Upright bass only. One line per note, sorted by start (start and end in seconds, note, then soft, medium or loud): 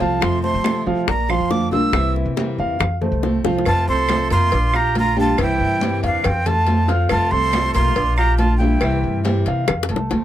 0.00 0.21 C2 medium
0.23 0.53 F2 medium
0.54 0.85 F3 medium
0.87 1.07 F3 medium
1.08 1.39 A#1 loud
1.40 1.70 F2 medium
1.71 1.92 B1 medium
1.93 2.24 C2 medium
2.25 2.56 C3 medium
2.58 2.79 E2 medium
2.80 3.10 F2 medium
3.12 3.43 C2 medium
3.45 3.65 C2 medium
3.66 3.86 F2 loud
3.87 4.28 C2 medium
4.31 4.51 F2 loud
4.53 5.34 A#1 loud
5.39 5.59 C2 loud
5.60 6.01 G2 medium
6.03 6.23 E2 loud
6.25 7.06 F2 loud
7.11 7.31 F2 loud
7.32 7.73 C2 medium
7.75 7.95 B1 loud
7.96 8.78 A#1 loud
8.81 9.02 C2 loud
9.04 9.44 G2 medium
9.47 9.67 C3 loud
9.68 9.89 F2 loud
9.90 10.09 C2 medium
10.11 10.24 D2 medium